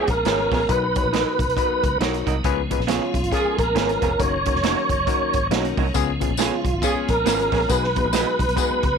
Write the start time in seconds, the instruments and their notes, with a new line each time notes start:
Already playing: tonewheel organ F3 G#3 B3 C#4, horn section C#4 F4 G#4, reed electric piano F4 G#4 B4 C#5
0.07 fingered electric bass A#1, tonewheel organ A#4, kick, closed hi-hat
0.25 fingered electric bass G#1, clean electric guitar B3 F4 G#4 C#5, reed electric piano F4 G#4 B4 C#5, snare, closed hi-hat
0.51 fingered electric bass A#1, clean electric guitar B3 F4 G#4 C#5, kick, snare, open hi-hat
0.69 fingered electric bass B1, reed electric piano B2 D#4 F#4 A#4 B4, tonewheel organ F#3 D#4 B4, kick, closed hi-hat
0.95 reed electric piano D#4 F#4 A#4 C#5, kick, closed hi-hat
1.04 fingered electric bass A#1
1.13 reed electric piano D#4 F#4 A#4 B4, clean electric guitar D#4 F#4 A#4 D#5, snare, closed hi-hat
1.39 fingered electric bass B1, kick, closed hi-hat
1.48 fingered electric bass B1, closed hi-hat
1.57 reed electric piano D#4 F#4 A#4 B4, kick, closed hi-hat
1.70 muted fingered electric bass stroke
1.83 fingered electric bass C#2, kick, closed hi-hat
2.00 fingered electric bass B1, reed electric piano D#4 F#4 A#4 C#5, clean electric guitar D#4 F#4 A#4 D#5, snare, closed hi-hat
2.14 closed hi-hat
2.26 fingered electric bass C2, clean electric guitar D#4 F#4 A#4 D#5, kick, closed hi-hat
2.44 fingered electric bass C#2, reed electric piano C#3 C#4 F4 G#4 B4, tonewheel organ F3 G#3 C#4, kick, closed hi-hat
2.71 reed electric piano C#4 F4 G#4 B4, kick, closed hi-hat
2.79 fingered electric bass A#1, snare
2.87 clean electric guitar B3 F4 G#4 C#5, reed electric piano C#4 F4 G#4 C#5, tonewheel organ F4, snare, closed hi-hat
3.14 fingered electric bass B1, kick, closed hi-hat
3.23 fingered electric bass G#1, closed hi-hat
3.32 reed electric piano C#4 F4 G#4 A#4, horn section C#4 F4 G#4, tonewheel organ G#4, kick, closed hi-hat
3.45 muted fingered electric bass stroke
3.58 fingered electric bass A#1, tonewheel organ A#4, kick, closed hi-hat
3.75 fingered electric bass G#1, clean electric guitar B3 F4 G#4 C#5, reed electric piano C#4 F4 G#4 B4, snare, closed hi-hat
3.89 closed hi-hat
4.02 fingered electric bass F1, clean electric guitar B3 F4 G#4 C#5, kick, closed hi-hat
4.19 fingered electric bass F#1, tonewheel organ D#3 F#3 A#3 C#5, reed electric piano C#4 D#4 F#4 A#4, kick, closed hi-hat
4.45 reed electric piano C#4 D#4 F#4 A#4, kick, closed hi-hat
4.54 fingered electric bass F1, snare
4.63 clean electric guitar A#3 D#4 F#4 C#5, reed electric piano C#4 D#4 F#4 A#4, snare, closed hi-hat
4.89 fingered electric bass F#1, kick, closed hi-hat
4.98 fingered electric bass F#1
5.07 reed electric piano C#4 D#4 F#4 A#4, kick, closed hi-hat
5.20 muted fingered electric bass stroke
5.33 fingered electric bass G#1, kick, closed hi-hat
5.51 fingered electric bass B1, clean electric guitar A#3 D#4 F#4 C#5, reed electric piano C#4 D#4 F#4 A#4, snare, closed hi-hat
5.65 closed hi-hat
5.77 fingered electric bass C2, clean electric guitar A#3 D#4 F#4 C#5, kick, open hi-hat
5.94 fingered electric bass C#2, reed electric piano C#3 B3 C#4 F4 G#4, tonewheel organ F3 G#3 B3, kick, closed hi-hat, tambourine
6.20 reed electric piano B3 C#4 F4 G#4, kick, closed hi-hat
6.29 fingered electric bass A#1
6.37 clean electric guitar B3 F4 G#4 C#5, reed electric piano B3 C#4 F4 G#4, tonewheel organ F4, snare, closed hi-hat, tambourine
6.64 fingered electric bass B1, kick, closed hi-hat
6.73 fingered electric bass G#1
6.82 reed electric piano B3 C#4 F4 G#4, horn section C#4 F4 G#4, tonewheel organ G#4, kick, closed hi-hat, tambourine
6.95 muted fingered electric bass stroke
7.08 fingered electric bass A#1, tonewheel organ A#4, kick, closed hi-hat
7.25 fingered electric bass G#1, reed electric piano B3 C#4 F4 G#4, clean electric guitar B3 F4 G#4 C#5, snare, closed hi-hat, tambourine
7.39 closed hi-hat
7.52 fingered electric bass A#1, clean electric guitar B3 F4 G#4 C#5, kick, snare, open hi-hat
7.69 fingered electric bass B1, reed electric piano B2 B3 D#4 F#4 G#4, tonewheel organ F#3 D#4 B4, kick, closed hi-hat, tambourine
7.84 snare
7.96 reed electric piano B3 D#4 F#4 G#4, kick, closed hi-hat
8.05 fingered electric bass A#1
8.12 reed electric piano B3 D#4 F#4 G#4, clean electric guitar D#4 F#4 B4 D#5, snare, closed hi-hat, tambourine
8.39 fingered electric bass B1, kick, closed hi-hat
8.48 fingered electric bass B1, closed hi-hat
8.56 reed electric piano B3 D#4 F#4 G#4, kick, closed hi-hat, tambourine
8.70 muted fingered electric bass stroke
8.83 fingered electric bass C#2, kick, closed hi-hat